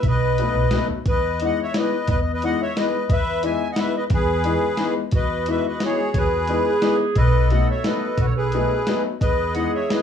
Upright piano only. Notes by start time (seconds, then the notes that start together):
0.39 F#3 A3 B3 D#4
0.73 F#3 A3 B3 D#4
1.41 E3 G#3 B3 D#4
1.76 E3 G#3 B3 D#4
2.43 E3 G#3 B3 D#4
2.76 E3 G#3 B3 D#4
3.43 E3 G#3 B3 D#4
3.77 E3 G#3 B3 D#4
4.44 E3 G#3 B3 D#4
4.79 E3 G#3 B3 D#4
5.47 E3 G#3 B3 D#4
5.81 E3 G#3 B3 D#4
6.48 E3 G#3 B3 D#4
6.82 E3 G#3 B3 D#4
7.51 F#3 A3 B3 D#4
7.86 F#3 A3 B3 D#4
8.54 F#3 A3 B3 D#4
8.88 F#3 A3 B3 D#4
9.55 E3 G#3 B3 D#4
9.89 E3 G#3 B3 D#4